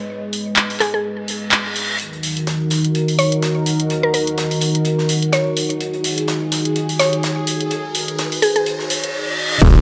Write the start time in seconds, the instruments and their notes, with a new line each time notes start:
Already playing: analog synth pad G#3 G#4 B4 D#5
0.33 open hi-hat
0.56 clap
0.70 open hi-hat
0.80 synth pluck G#4, clap, open hi-hat
0.94 synth pluck G#4
1.04 reverse cymbal
1.28 open hi-hat
1.51 clap
1.76 open hi-hat
2.00 analog synth pad D#3 D#4 F#4 A#4, closed hi-hat, riser
2.13 closed hi-hat
2.23 open hi-hat
2.37 closed hi-hat
2.47 snare, closed hi-hat
2.70 snare, closed hi-hat, open hi-hat
2.85 closed hi-hat
2.95 closed hi-hat
3.08 open hi-hat
3.19 synth pluck C#5, closed hi-hat, open hi-hat
3.32 closed hi-hat
3.42 snare, closed hi-hat
3.66 closed hi-hat, open hi-hat
3.80 closed hi-hat
3.90 closed hi-hat
4.03 synth pluck A#4
4.14 synth pluck A#4, closed hi-hat, open hi-hat
4.27 closed hi-hat
4.38 snare, closed hi-hat
4.51 open hi-hat
4.61 closed hi-hat, open hi-hat
4.75 closed hi-hat
4.85 closed hi-hat
4.99 snare
5.09 closed hi-hat, open hi-hat
5.22 closed hi-hat
5.32 synth pluck C#5, snare, closed hi-hat
5.57 closed hi-hat, open hi-hat
5.70 closed hi-hat
5.80 analog synth pad G#4, closed hi-hat
5.93 closed hi-hat
6.04 open hi-hat
6.18 closed hi-hat
6.28 snare, closed hi-hat
6.52 snare, closed hi-hat, open hi-hat
6.65 closed hi-hat
6.76 closed hi-hat
6.89 open hi-hat
6.99 synth pluck C#5, snare, closed hi-hat, open hi-hat
7.13 closed hi-hat
7.23 snare, closed hi-hat
7.47 closed hi-hat, open hi-hat
7.61 closed hi-hat
7.71 closed hi-hat
7.95 closed hi-hat, open hi-hat
8.08 closed hi-hat
8.19 snare, closed hi-hat
8.32 open hi-hat
8.42 synth pluck G#4, closed hi-hat, open hi-hat
8.56 synth pluck G#4, closed hi-hat
8.66 closed hi-hat, reverse cymbal
8.79 snare
8.90 closed hi-hat, open hi-hat
9.04 closed hi-hat
9.62 detuned saw bass D#1, kick, closed hi-hat, crash
9.74 closed hi-hat